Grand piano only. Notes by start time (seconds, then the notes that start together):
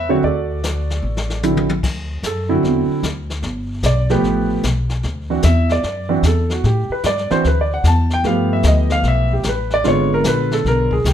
Already playing: B4
0.09 D3 F#3 C4 F#4 C#5
0.24 F#4 A4 D5
1.43 D3 F#3 C4 E4
2.26 A4
2.49 D3 F#3 C4 E4 F#4
3.86 D5
4.10 F3 A3 B3 G4 B4
5.30 E3 C4 D4 F#4
5.45 E5
5.72 D5
6.09 E3 C4 D4 F#4
6.27 A4
6.52 F#4
6.65 G4
6.92 B4
7.06 D5
7.31 E3 C4 D4 F#4 C5
7.47 B4
7.61 D5
7.74 F#5
7.88 A5
8.14 G5
8.25 F3 A3 B3 G4 F5
8.53 E5
8.67 D#5
8.92 F5
9.08 E5
9.33 G4
9.49 B4
9.74 D5
9.84 D3 G#3 B3 F4 C#5
10.14 A#4
10.28 B4
10.54 A4
10.68 A#4
10.93 G#4
11.08 G4